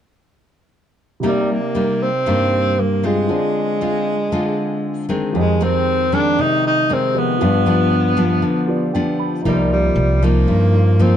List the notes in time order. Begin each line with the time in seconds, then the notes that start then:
1.20 C3 G3 A#3 D#4 G4
1.24 G3 D#4 A#4 D5
1.51 A#3
1.75 G3 A#3 D#4
2.03 C4
2.26 G2 G3 A#3 D#4
2.80 A#3
3.03 G#3 C4 F4
3.26 D3 F4 G#4
3.31 C5 D5
3.81 G#3 C4 F4
4.32 D3 G#3 C4 F4
5.09 D#3 G#3 C4
5.32 F2 F3 G4 G#4
5.37 G#3 C5 D#5
5.61 D#3 G#3 C4
6.12 D#3 G#3 C4 D4
6.39 C3 D#4
6.67 D#4
6.89 D#3 G#3 C4
7.14 F3 G4 G#4 C5 D#5
7.18 B3
7.38 G2 F3 B3 F4 G4 B4
7.42 D4 D5
7.66 F3 B3 D4
8.17 F3 B3 D4
8.42 D3
8.66 F4 G4 B4 D5
8.93 F3 B3 D4 G5
9.19 B5
9.42 C2 C3 F3 D#4 F4 A#4
9.46 G3 A#3 D#4 D5
9.73 G3
9.96 C2
10.22 F3 A#3 D#4
10.47 G2
10.72 D#4 F4 A#4 C5
10.99 F3 A#3 C4 D#4